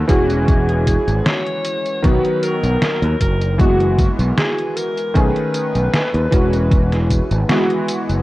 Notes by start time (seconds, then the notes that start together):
Already playing: D#3 A3 C#4 A4
0.07 E1 E3 G#3 C#4 F#4 G#4, kick, closed hi-hat, tambourine
0.30 closed hi-hat, tambourine
0.48 kick, closed hi-hat, tambourine
0.69 closed hi-hat
0.87 kick, closed hi-hat, tambourine
1.08 G#1, closed hi-hat, tambourine
1.26 C#5, snare, closed hi-hat, tambourine
1.47 closed hi-hat
1.65 closed hi-hat, tambourine
1.86 closed hi-hat, tambourine
2.02 B1 D#3 F#3 B3 F#4 B4, kick, closed hi-hat, tambourine
2.24 closed hi-hat
2.43 A#4, closed hi-hat, tambourine
2.63 B1, closed hi-hat, tambourine
2.82 snare, closed hi-hat, tambourine
3.02 D#2, closed hi-hat
3.21 F#1 A#4, kick, closed hi-hat, tambourine
3.42 closed hi-hat, tambourine
3.58 E3 G#3 B3 F#4, kick, closed hi-hat, tambourine
3.80 closed hi-hat
3.99 kick, closed hi-hat, tambourine
4.19 B1, closed hi-hat, tambourine
4.38 G#4, snare, closed hi-hat, tambourine
4.58 closed hi-hat
4.76 A#4, closed hi-hat, tambourine
4.97 closed hi-hat, tambourine
5.14 B1 D#3 A3 C#4 G#4 B4, kick, closed hi-hat, tambourine
5.36 closed hi-hat
5.54 closed hi-hat, tambourine
5.75 B1, closed hi-hat, tambourine
5.93 snare, closed hi-hat, tambourine
6.14 D#2, closed hi-hat
6.31 E1 E3 G#3 C#4 F#4, kick, closed hi-hat, tambourine
6.53 closed hi-hat, tambourine
6.71 kick, closed hi-hat, tambourine
6.92 snare, closed hi-hat
7.10 kick, closed hi-hat, tambourine
7.31 G#1, closed hi-hat, tambourine
7.49 E3 G#3 B3 F#4, snare, closed hi-hat, tambourine
7.70 closed hi-hat
7.88 closed hi-hat, tambourine
8.09 F#1, closed hi-hat, tambourine